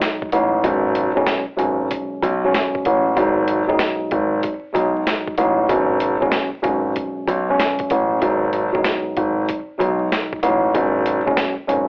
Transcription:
Already playing: tine electric piano B2 F#3 G#3 D#4
0.02 snare, closed hi-hat
0.22 kick
0.32 grand piano A1, tine electric piano B2 F#3 G#3 D#4, closed hi-hat
0.64 grand piano G#1, tine electric piano B2 F#3 G#3 C#4, kick, closed hi-hat
0.95 closed hi-hat
1.15 grand piano F#1, tine electric piano B2 F#3 G#3 C#4, kick
1.26 snare, closed hi-hat
1.57 grand piano G#1, tine electric piano B2 F#3 G#3 C#4, closed hi-hat
1.91 kick, closed hi-hat
2.22 grand piano B1, kick, closed hi-hat
2.44 tine electric piano B2 F#3 G#3 C#4
2.54 snare, closed hi-hat
2.75 kick
2.85 grand piano A1, kick, closed hi-hat
3.16 grand piano G#1, tine electric piano B2 F#3 G#3 D#4, kick, closed hi-hat
3.48 closed hi-hat
3.67 grand piano F#1, tine electric piano B2 F#3 G#3 D#4, kick
3.79 snare, closed hi-hat
4.11 grand piano G#1, kick, closed hi-hat
4.43 kick, closed hi-hat
4.73 grand piano B1, tine electric piano B2 F#3 G#3 D#4, kick, closed hi-hat
5.07 snare, closed hi-hat
5.27 kick
5.38 grand piano A1, tine electric piano B2 F#3 G#3 D#4, closed hi-hat
5.69 grand piano G#1, tine electric piano B2 F#3 G#3 C#4, kick, closed hi-hat
6.00 closed hi-hat
6.20 grand piano F#1, tine electric piano B2 F#3 G#3 C#4, kick
6.32 snare, closed hi-hat
6.62 grand piano G#1, tine electric piano B2 F#3 G#3 C#4, kick, closed hi-hat
6.96 kick, closed hi-hat
7.27 grand piano B1, kick, closed hi-hat
7.49 tine electric piano B2 F#3 G#3 C#4
7.60 snare, closed hi-hat
7.79 kick, closed hi-hat
7.90 grand piano A1, kick, closed hi-hat
8.21 grand piano G#1, tine electric piano B2 F#3 G#3 D#4, kick, closed hi-hat
8.53 closed hi-hat
8.72 grand piano F#1, tine electric piano B2 F#3 G#3 D#4, kick
8.84 snare, closed hi-hat
9.16 grand piano G#1, kick, closed hi-hat
9.48 kick, closed hi-hat
9.78 grand piano B1, tine electric piano B2 F#3 G#3 D#4, kick, closed hi-hat
10.12 snare, closed hi-hat
10.33 kick
10.43 grand piano A1, tine electric piano B2 F#3 G#3 D#4, closed hi-hat
10.74 grand piano G#1, tine electric piano B2 F#3 G#3 C#4, kick, closed hi-hat
11.06 closed hi-hat
11.26 grand piano F#1, tine electric piano B2 F#3 G#3 C#4, kick
11.37 snare, closed hi-hat
11.67 grand piano G#1, tine electric piano B2 F#3 G#3 C#4, closed hi-hat

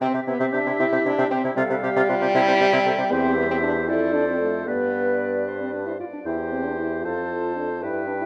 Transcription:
0.00 bassoon C3, french horn C4, oboe C4, clarinet G4, flute E5
0.14 bassoon C3, oboe G4
0.27 bassoon C3, french horn B3, oboe E4
0.39 bassoon C3, oboe C4, french horn C4
0.52 bassoon C3, french horn D4, oboe G4
0.66 bassoon C3, oboe E4
0.79 bassoon C3, oboe C4, french horn E4
0.92 bassoon C3, oboe G4
1.06 bassoon C3, french horn D4, oboe E4
1.18 bassoon C3, oboe C4
1.30 bassoon C3, french horn C4, oboe G4
1.44 bassoon C3, oboe E4
1.56 bassoon C3, french horn G3, oboe F4, clarinet A4, flute F5
1.70 bassoon C3, oboe B4
1.83 bassoon C3, clarinet G4, oboe G4
1.96 bassoon C3, oboe F4
2.09 bassoon C3, clarinet F4, oboe B4
2.21 bassoon C3, oboe G4
2.35 bassoon C3, clarinet E4, oboe E4, flute E5
2.47 bassoon C3, oboe C5
2.60 bassoon C3, clarinet G4, oboe G4
2.73 bassoon C3, oboe E4
2.86 bassoon C3, clarinet A4, oboe C5
2.98 bassoon C3, oboe G4
3.11 bassoon E2, french horn C4, clarinet G4, oboe C5, flute E5
3.37 french horn B3
3.51 french horn C4
3.63 french horn D4
3.88 bassoon F2, french horn E4, clarinet A4, oboe C5, flute D5
4.14 french horn D4
4.28 french horn C4
4.41 french horn A3
4.67 bassoon G2, french horn B3, clarinet B4, oboe B4, flute D5
5.46 clarinet C5
5.60 french horn C4
5.72 french horn D4, clarinet B4
5.87 french horn E4, clarinet C5
6.00 french horn F4, clarinet D5
6.13 french horn D4
6.25 bassoon E2, french horn E4, clarinet G4, oboe C5, flute G5
6.52 french horn C4
6.66 french horn D4
6.78 french horn E4
7.04 bassoon F2, french horn F4, clarinet A4, oboe C5, flute A5
7.56 french horn D4
7.82 bassoon G2, french horn E4, clarinet B4, oboe B4, flute G5
8.07 french horn D4
8.21 french horn E4

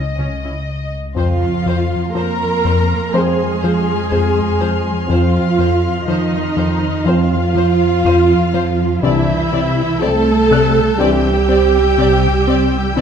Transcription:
Already playing: synth drone C#2, violin section D#5, grand piano D#6
0.18 double bass section C#2, cello section C#3, viola section C#4
0.44 cello section C#3, viola section C#4 E4
1.15 analog synth bass F2, synth drone F2, double bass section F2, french horn section F3 C4, cello section F3, viola section F4, violin section C5 F5 C6
1.66 analog synth bass F2, violin section C5
2.15 double bass section F2, analog synth bass F3, cello section A#3, viola section A#4, violin section C5 A#5 F6
2.65 analog synth bass F2, violin section C5
3.13 double bass section F2, french horn section F3 C4, analog synth bass F3, cello section G#3, viola section G#4, violin section C5 G#5, grand piano C5 C6
3.62 analog synth bass F3, violin section C5
4.10 analog synth bass F2, double bass section F2, violin section C5
4.61 analog synth bass F3, violin section C5
5.07 analog synth bass F2, synth drone F2, double bass section F2, french horn section F3 C4, cello section F3, viola section F4, violin section C5
5.11 violin section F5
5.59 analog synth bass F2, violin section C5
6.08 double bass section F2, cello section D#3, analog synth bass F3, viola section D#4, violin section C5 D#5
6.57 analog synth bass F2, violin section C5
7.04 double bass section F2, analog synth bass F3, french horn section F3 C4, cello section F3, viola section F4, violin section C5 F5, grand piano C6
7.09 grand piano C5
7.55 analog synth bass F3, violin section C5
8.05 analog synth bass F2, double bass section F2, violin section C5, grand piano D#7
8.54 analog synth bass F3, violin section C5
9.02 double bass section C2, synth drone C2, analog synth bass C3, timpani C3, french horn section E3 D4, cello section E3, viola section E4, violin section D5 E5 E6 G6
9.52 analog synth bass C3, violin section D5
10.01 double bass section C2, cello section A3, analog synth bass C4, viola section A4, violin section D5 A5
10.51 analog synth bass C3, violin section D5, grand piano F#6
10.98 double bass section C2, french horn section E3 D4, cello section G3, analog synth bass C4, viola section G4, violin section D5 G5
11.49 analog synth bass C4, violin section D5
11.98 double bass section C2, analog synth bass C3, violin section D5
12.48 analog synth bass C4, violin section D5
12.96 synth drone C2, double bass section C2, analog synth bass C3, french horn section E3 D4, cello section E3, viola section E4

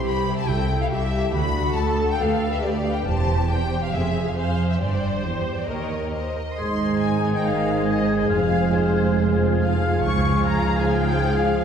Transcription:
Already playing: violin section E4 C5, viola section G4
0.05 cello section C2, violin section B5
0.28 violin section E4 C5
0.38 violin section A5
0.48 double bass section C2, cello section C2, violin section E4 A4 G5, viola section E4
0.69 violin section E4 A4
0.81 violin section F5
0.91 cello section C2, viola section G4, violin section E5
1.12 violin section E4 A4
1.34 cello section D2, double bass section D2, viola section F#4, violin section B5
1.55 violin section F#4 A4
1.76 cello section D2, viola section A4, violin section A5
1.98 violin section F#4 A4
2.11 violin section G5
2.19 cello section D2, double bass section D2, violin section G4 B4 F5, viola section A4
2.43 violin section G4 B4
2.54 violin section E5
2.62 cello section D2, viola section G4, violin section D5
2.85 violin section G4 B4 F5
2.96 violin section G5
3.05 double bass section E1, cello section E2, violin section G4 C5 A5
3.49 violin section G4 C5 G5
3.83 violin section F5
3.93 double bass section F1, cello section F2, violin section G#4 C5 E5, viola section G#4
4.27 violin section F5
4.35 violin section G#4 C5 F5, viola section C5
4.70 violin section E5
4.80 double bass section G1, cello section G2, violin section G4 C5 D5, viola section C5
5.24 cello section E2, violin section G4 C5
5.58 violin section D5
5.68 double bass section D#2, cello section D#2, violin section G4 C#5 D#5, viola section A#4
6.12 violin section C5 D#5
6.36 violin section A#4
6.58 double bass section G#1, trombone section G#2 D#3, cello section G#2, french horn section G#3 G#4, viola section G#3 D#4, clarinet G#4, violin section G#4 C5 C6, oboe D#5, flute section G#6
7.00 violin section G#5
7.34 violin section G5
7.45 violin section F5
7.88 violin section D#5
8.20 violin section D#5
8.30 double bass section F1, cello section F2, trombone section F3, viola section F4, oboe F5, violin section F5
8.74 violin section C5
9.61 violin section F5
10.04 double bass section C#2, cello section C#2, trombone section G#2, viola section F3, french horn section G#3 G#4, violin section G#4 F5 C#6, clarinet G#4, flute section G#6
10.48 violin section A#5
10.81 violin section G#5
10.93 violin section G5
11.33 violin section F5

